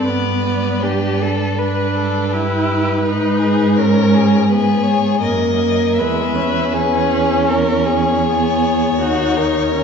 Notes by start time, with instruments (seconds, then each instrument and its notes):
0.04 cello G2, violin B4 D5
0.08 viola B3
0.46 viola B3
0.82 viola D4, violin G4 B4
1.22 violin A4
1.58 viola D4, violin B4
1.95 violin A4
2.31 viola E4, violin G4 B4
3.04 cello G#2, viola D#4, violin B4
3.39 violin G#4
3.76 viola C#4, violin A#4
4.15 violin G#4
4.50 viola B3, violin G#4 B4
4.83 violin C#5
5.22 cello F#2, viola A#3, violin A#4 D#5
5.98 cello E2, viola G#3, violin B4 E5
6.35 viola C#4
6.73 violin G#4 B4
7.47 violin A#4 C#5
7.86 violin G#4
8.24 viola B3
8.98 cello D#2, viola D#4, violin F#4
9.37 violin A#4
9.75 viola C#4